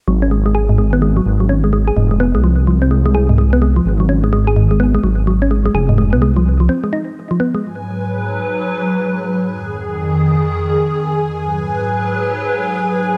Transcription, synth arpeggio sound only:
0.08 0.21 F#3 medium
0.22 0.29 C#4 medium
0.31 0.45 G#3 medium
0.46 0.53 G#3 medium
0.55 0.69 G#4 medium
0.69 0.76 G#2 loud
0.78 0.92 G#3 medium
0.93 0.97 B3 loud
1.02 1.14 G#3 loud
1.17 1.24 F#3 medium
1.40 1.49 F#3 medium
1.49 1.61 C#4 medium
1.64 1.72 G#3 medium
1.73 1.84 G#3 loud
1.88 1.96 G#4 medium
1.97 2.08 G#2 loud
2.11 2.20 G#3 medium
2.20 2.27 B3 loud
2.35 2.42 G#3 loud
2.44 2.55 F3 medium
2.67 2.81 F3 medium
2.82 2.89 C4 medium
2.91 3.04 G#3 medium
3.06 3.13 G#3 loud
3.15 3.29 G#4 medium
3.29 3.36 G#2 loud
3.38 3.52 G#3 medium
3.53 3.57 B3 loud
3.62 3.73 G#3 loud
3.76 3.84 F3 medium
4.00 4.09 F#3 medium
4.09 4.21 C#4 medium
4.24 4.32 G#3 medium
4.33 4.44 G#3 loud
4.47 4.56 G#4 medium
4.56 4.68 G#2 loud
4.71 4.80 G#3 medium
4.80 4.87 B3 loud
4.95 5.02 G#3 medium
5.04 5.15 F#3 medium
5.27 5.41 F#3 medium
5.42 5.49 C#4 medium
5.51 5.64 G#3 medium
5.66 5.73 G#3 loud
5.75 5.88 G#4 medium
5.89 5.96 G#2 loud
5.98 6.12 G#3 medium
6.13 6.17 B3 loud
6.22 6.33 G#3 loud
6.36 6.43 F3 medium
6.60 6.69 F3 medium
6.69 6.81 C4 medium
6.84 6.92 G#3 medium
6.93 7.00 D#4 medium
7.31 7.39 F3 medium
7.40 7.47 B3 loud
7.55 7.62 G#3 medium

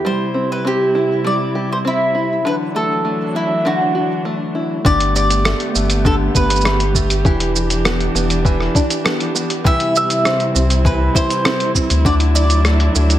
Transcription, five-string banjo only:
0.00 0.11 B3 medium
0.00 0.95 E4 soft
0.00 0.55 G4 medium
0.05 1.23 G3 medium
0.34 0.64 C4 medium
0.65 1.84 C4 medium
0.95 2.15 E4 medium
1.25 2.45 G3 medium
1.55 2.51 G4 medium
1.85 2.51 C4 medium
2.15 3.35 E4 medium
2.45 3.65 D3 medium
2.75 3.04 A3 medium
3.05 4.25 A3 medium
3.35 4.54 E4 medium
3.65 4.84 D3 medium
3.95 4.91 F#4 medium
4.25 5.44 A3 medium
4.55 4.91 E4 soft
4.85 6.04 D3 medium
4.85 7.24 G4 medium
5.45 5.74 A3 medium
5.75 6.64 A3 medium
6.05 7.24 D3 medium
6.35 7.75 B3 medium
6.65 6.94 A3 medium
6.95 7.31 A3 medium
7.25 8.45 E3 medium
7.25 9.64 G4 medium
7.85 8.14 B3 medium
8.15 9.03 B3 medium
8.45 9.64 E3 medium
8.75 9.71 D4 medium
9.05 9.34 B3 medium
9.35 9.71 B3 medium
9.64 10.84 E3 medium
9.64 12.05 G4 medium
10.25 10.54 C4 medium
10.55 11.44 C4 medium
10.85 12.05 E3 medium
11.15 12.55 E4 medium
11.45 11.74 C4 medium
11.75 12.11 C4 medium
12.05 13.19 D3 medium
12.05 13.19 F#4 medium
12.65 12.95 A3 medium
12.95 13.19 A3 medium

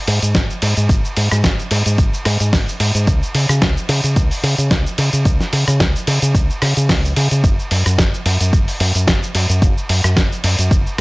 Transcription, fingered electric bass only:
0.08 0.20 G#2 loud
0.23 0.33 G#2 medium
0.35 0.47 G#1 medium
0.62 0.74 G#2 medium
0.77 0.87 G#2 medium
0.89 1.02 G#1 loud
1.17 1.29 G#2 medium
1.32 1.42 G#2 medium
1.44 1.56 G#1 medium
1.71 1.83 G#2 loud
1.86 1.96 G#2 medium
1.98 2.11 G#1 medium
2.13 muted fingered electric bass stroke soft
2.26 2.38 G#2 loud
2.40 2.51 G#2 loud
2.53 2.65 G#1 medium
2.80 2.92 G#2 medium
2.95 3.05 G#2 medium
3.07 3.20 C#2 medium
3.35 3.47 C#3 medium
3.49 3.60 C#3 medium
3.62 3.74 C#2 medium
3.89 4.01 C#3 loud
4.04 4.14 C#3 medium
4.16 4.29 C#2 medium
4.43 4.56 C#3 loud
4.58 4.69 C#3 medium
4.71 4.83 C#2 medium
4.98 5.11 C#3 medium
5.13 5.23 C#3 medium
5.25 5.38 C#2 loud
5.53 5.65 C#3 medium
5.68 5.78 C#3 loud
5.80 5.92 C#2 medium
6.07 6.20 C#3 loud
6.22 6.33 C#3 medium
6.35 6.47 C#2 medium
6.50 muted fingered electric bass stroke soft
6.62 6.74 C#3 medium
6.77 6.87 C#3 loud
6.89 7.12 C#2 medium
7.17 7.29 C#3 loud
7.32 7.42 C#3 medium
7.44 7.56 F#1 loud
7.71 7.83 F#2 medium
7.86 7.96 F#2 medium
7.98 8.11 F#1 medium
8.26 8.38 F#2 medium
8.41 8.51 F#2 medium
8.53 8.65 F#1 medium
8.80 8.93 F#2 loud
8.95 9.05 F#2 loud
9.08 9.20 F#1 medium
9.35 9.47 F#2 medium
9.50 9.60 F#2 medium
9.62 9.74 F#1 loud
9.89 10.02 F#2 medium
10.04 10.14 F#2 medium
10.17 10.29 F#1 medium
10.44 10.56 F#2 loud
10.59 10.69 F#2 medium
10.71 10.83 F#1 medium

